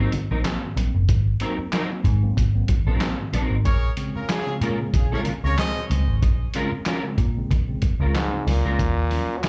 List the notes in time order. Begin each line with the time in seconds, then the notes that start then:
0.00 F#3 A#3 C4 D#4 A#4
0.12 G#2 D#3, closed hi-hat, muted conga, low conga
0.31 A#1 F#3 A#3 C4 D#4 A#4
0.44 A#3 C4, snare, clap, closed hi-hat, high conga
0.64 G#2 D#3
0.76 A#1 A#3 C4, closed hi-hat, high conga
0.94 F#1
1.09 G#1 G#2 D#3, kick, closed hi-hat, muted conga
1.40 F#3 A#3 C4 D#4 A#4, closed hi-hat
1.58 A#3 C4, muted picked electric bass stroke
1.72 F#3 C4 D#4 A#4, snare, clap, closed hi-hat, high conga
1.90 F#3 A#3 C4
2.04 G#2 D#3, kick, closed hi-hat
2.22 F#3 A#3 C4
2.37 G#1, kick, closed hi-hat, muted conga, low conga
2.55 F#3 A#3 C4
2.68 G#2 D#3, kick, closed hi-hat, muted conga
2.87 A#1 F#3 A#3 C4 D#4 A#4
3.00 A#3 C4, snare, clap, closed hi-hat, high conga
3.19 G#2 D#3
3.32 A#1 F#3 A#3 C4 D#4 A#4, closed hi-hat, high conga
3.50 G#1
3.65 A#1 A#2 G#4 A#4 C#5, kick, closed hi-hat, muted conga
3.96 C#3 G#3 C4, closed hi-hat
4.15 G#3 C4 C#4 F4 A#4, muted picked electric bass stroke
4.29 C#4 F4 G#4, snare, clap, closed hi-hat, high conga
4.47 C#3 G#3 C4
4.61 A#2 G#3 C#4 F4 A#4, closed hi-hat
4.79 C#3 G#3 C4
4.94 A#1 C#4 F4 G#4, kick, closed hi-hat, muted conga, low conga
5.11 C#3 G#3 C4 C#4 F4 G#4 A#4 C#5
5.25 A#2, closed hi-hat, muted conga, low conga
5.44 C#2 C#3 G#3 C4 C#4 F4 G#4 A#4 C#5
5.58 G#3 C4 G#4 C5 D#5, snare, clap, closed hi-hat, high conga
5.76 A#2
5.90 C#2 G#3 C4, closed hi-hat, high conga
6.08 G#1
6.22 A#1 A#2, kick, closed hi-hat, muted conga
6.54 C#3 G#3 C4 C#4 F4 A#4, closed hi-hat, muted conga
6.72 G#3 C4, muted picked electric bass stroke
6.85 G#3 C#4 F4 A#4, snare, clap, closed hi-hat, high conga
7.04 C#3 G#3 C4
7.18 A#2, kick, closed hi-hat
7.37 C#3 G#3 C4
7.50 A#1, kick, closed hi-hat, muted conga, low conga
7.69 C#3 G#3 C4
7.82 A#2, kick, closed hi-hat, muted conga
8.00 C#2 C#3 G#3 C4 C#4 F4 A#4
8.15 G#2, snare, clap, closed hi-hat, high conga
8.33 C#3 G#3 C4
8.47 C#2 A#2, open hi-hat, high conga
8.65 C#2 A#2 G#3 C#4 F4 A#4
8.79 D#2 D#3, kick, closed hi-hat, muted conga
9.11 F3 F#3 C#4, open hi-hat, muted conga
9.29 F#3 C#4
9.37 F#3
9.43 D#3, snare, clap, closed hi-hat, high conga